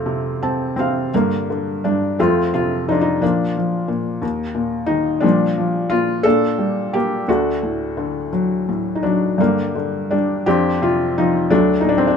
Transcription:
0.00 1.09 F2 medium
0.00 0.06 C3 soft
0.00 1.09 A3 soft
0.00 0.74 A4 soft
0.00 0.74 C5 medium
0.00 0.74 F5 medium
0.06 0.78 C3 soft
0.43 0.75 C4 soft
0.43 0.75 A5 medium
0.76 1.13 C3 soft
0.76 1.10 C4 medium
0.76 1.11 F5 medium
1.14 1.83 G2 soft
1.14 1.49 D3 soft
1.14 1.80 A#3 medium
1.50 2.17 D3 soft
1.84 2.18 G2 soft
1.84 2.16 D4 medium
2.19 2.87 F2 soft
2.19 3.18 A3 medium
2.19 3.18 C4 soft
2.19 2.52 F4 medium
2.54 3.20 C3 soft
2.54 2.89 F4 medium
2.88 3.21 F2 soft
2.88 3.00 D4 medium
2.88 2.95 D#4 medium
3.01 3.22 D#4 medium
3.21 3.87 A#2 soft
3.21 3.55 F3 soft
3.21 4.18 A#3 soft
3.21 4.19 D4 medium
3.57 4.21 F3 soft
3.88 4.21 A#2 soft
4.22 5.20 D#2 soft
4.55 5.21 A#2 soft
4.86 5.22 D#3 soft
4.86 5.23 D#4 medium
5.20 5.89 A#2 medium
5.20 5.56 F3 medium
5.20 6.20 G3 soft
5.20 5.92 D4 medium
5.58 6.23 F3 soft
5.90 6.24 A#2 soft
5.90 6.22 F4 medium
6.23 7.24 A#2 soft
6.23 7.23 D4 medium
6.23 6.94 A4 medium
6.58 7.25 G3 soft
6.93 7.27 A#3 soft
6.93 7.28 G4 medium
7.28 9.35 D2 soft
7.28 8.29 A3 soft
7.28 8.29 D4 soft
7.28 8.29 F#4 medium
7.63 8.67 A2 soft
7.97 9.35 D3 soft
8.33 9.03 F#3 soft
8.69 9.37 A2 soft
8.95 9.03 D#4 soft
9.03 9.38 F#3 soft
9.03 9.39 D4 medium
9.38 10.42 G2 soft
9.38 9.74 D3 soft
9.38 10.10 G3 soft
9.38 10.13 A#3 medium
9.75 10.44 D3 soft
10.11 10.46 G3 soft
10.11 10.44 D4 medium
10.46 11.47 F2 medium
10.46 11.47 C4 medium
10.46 11.47 D4 medium
10.46 10.83 G4 medium
10.82 11.48 C3 soft
10.82 11.14 F4 medium
11.18 11.50 F3 soft
11.18 11.48 D#4 medium
11.50 12.17 D2 soft
11.50 12.17 F#3 soft
11.50 12.17 A3 medium
11.50 11.80 D4 medium
11.81 12.17 A2 soft
11.81 11.90 D#4 medium
11.89 11.98 D4 medium
11.98 12.07 C4 medium
12.07 12.17 D4 medium

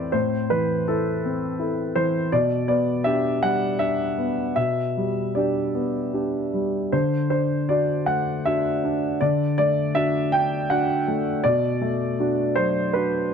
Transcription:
0.00 0.11 A2 soft
0.00 0.16 E3 soft
0.00 0.36 C4 soft
0.00 0.17 E4 soft
0.00 0.17 A4 soft
0.00 0.16 B4 medium
0.00 0.12 C5 medium
0.00 0.13 D5 medium
0.00 0.17 E5 medium
0.12 2.28 A2 soft
0.12 0.50 C5 medium
0.50 1.10 E3 soft
0.50 0.87 B4 medium
0.88 1.21 E4 soft
0.88 1.59 A4 medium
1.25 1.82 C4 soft
1.59 1.92 E4 soft
1.59 1.92 A4 soft
1.96 2.32 E3 soft
1.96 2.32 C5 medium
2.32 4.52 B2 soft
2.32 2.67 D5 medium
2.68 3.27 B3 soft
2.68 3.05 D5 medium
3.04 3.38 D4 soft
3.04 3.39 G4 soft
3.04 3.41 E5 medium
3.43 4.02 G3 soft
3.43 3.79 F#5 medium
3.79 4.13 D4 soft
3.79 4.14 G4 soft
3.79 4.54 E5 medium
4.18 4.81 B3 soft
4.56 6.89 B2 soft
4.56 5.35 E5 medium
4.97 5.59 G3 soft
5.35 5.71 D4 soft
5.35 5.71 G4 soft
5.35 6.13 D5 soft
5.75 6.38 B3 soft
6.13 6.49 D4 soft
6.13 6.50 G4 soft
6.54 6.93 G3 soft
6.92 9.16 D3 soft
6.92 7.29 C5 medium
7.30 7.68 D4 soft
7.30 7.69 C5 medium
7.69 8.04 D4 soft
7.69 8.04 F#4 soft
7.69 8.08 D5 medium
8.06 8.68 A3 soft
8.06 8.45 F#5 medium
8.45 8.79 D4 soft
8.45 8.80 F#4 soft
8.45 9.20 E5 medium
8.84 9.43 D4 soft
9.21 11.40 D3 soft
9.21 9.56 D5 medium
9.58 10.18 A3 soft
9.58 9.95 D5 medium
9.95 10.28 D4 soft
9.95 10.29 F#4 soft
9.95 10.32 E5 medium
10.32 10.69 D4 soft
10.32 10.69 G5 medium
10.70 11.03 D4 soft
10.70 11.03 F#4 soft
10.70 11.44 F#5 medium
11.08 11.44 A3 soft
11.44 13.34 B2 soft
11.44 12.55 D5 medium
11.82 12.40 A3 soft
12.20 12.52 D4 soft
12.20 12.52 F#4 soft
12.56 13.16 F#3 soft
12.56 12.93 C5 medium
12.93 13.29 D4 soft
12.93 13.29 F#4 soft
12.93 13.34 B4 medium

